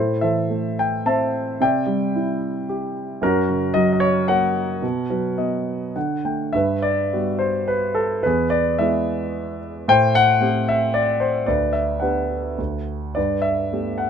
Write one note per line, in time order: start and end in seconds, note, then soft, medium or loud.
0.00 1.56 A2 medium
0.00 0.75 E4 soft
0.00 0.22 A4 soft
0.00 0.19 C5 medium
0.21 1.30 E3 soft
0.21 1.03 A4 medium
0.21 1.02 C5 medium
0.21 0.74 E5 medium
0.50 1.57 A3 soft
0.79 1.07 G5 medium
1.06 1.59 C4 medium
1.06 1.58 C5 medium
1.06 1.57 E5 medium
1.06 1.62 A5 medium
1.60 3.18 C3 medium
1.60 2.66 D5 medium
1.60 2.65 E5 medium
1.60 2.65 G5 medium
1.86 2.91 G3 soft
2.15 3.19 E4 medium
2.69 3.21 G4 medium
3.21 4.79 F#2 medium
3.21 3.99 C#4 medium
3.21 3.99 F#4 medium
3.21 3.77 A#4 medium
3.49 4.53 C#3 medium
3.74 4.80 F#3 medium
3.74 3.91 D#5 medium
3.93 4.00 D#5 medium
4.00 4.27 C#5 medium
4.28 4.82 A#3 medium
4.28 6.22 A#4 medium
4.28 6.21 C#5 medium
4.28 5.94 F#5 medium
4.82 5.92 B2 medium
5.10 5.93 F#3 soft
5.10 5.36 B4 medium
5.38 5.94 B3 soft
5.38 5.91 D#5 medium
5.96 6.53 D3 medium
5.96 6.23 F#5 medium
6.25 6.54 A3 soft
6.25 6.53 G5 soft
6.53 8.21 G2 medium
6.53 7.37 B4 medium
6.53 6.84 E5 medium
6.82 7.41 D5 medium
7.13 8.22 G3 soft
7.13 8.22 B3 soft
7.13 8.22 F#4 soft
7.39 7.66 C5 medium
7.68 7.97 B4 medium
7.95 8.22 A4 medium
8.23 9.85 E2 medium
8.23 8.80 G#4 medium
8.23 8.53 B4 medium
8.50 8.80 D5 medium
8.79 9.85 G#3 soft
8.79 9.85 B3 soft
8.79 9.85 E4 soft
8.79 9.58 G#4 medium
8.79 9.57 E5 medium
9.88 11.44 A2 medium
9.88 10.65 C5 medium
9.88 10.16 G5 loud
10.15 10.65 F#5 loud
10.41 11.45 A3 soft
10.41 11.45 C4 soft
10.41 11.45 G4 soft
10.69 10.96 E5 medium
10.94 11.22 D5 medium
11.20 11.48 C5 medium
11.46 12.55 D2 medium
11.46 12.01 B4 medium
11.46 11.75 D5 medium
11.73 11.99 E5 medium
12.00 12.57 B3 soft
12.00 12.57 D4 soft
12.00 12.57 G4 soft
12.00 12.84 B4 soft
12.00 12.82 F#5 medium
12.58 13.15 D2 medium
13.15 14.10 G2 medium
13.15 13.98 B4 soft
13.15 13.45 D5 medium
13.42 14.02 E5 medium
13.72 14.10 A3 soft
13.72 14.10 B3 soft
13.72 14.10 G4 soft
13.98 14.10 F#5 medium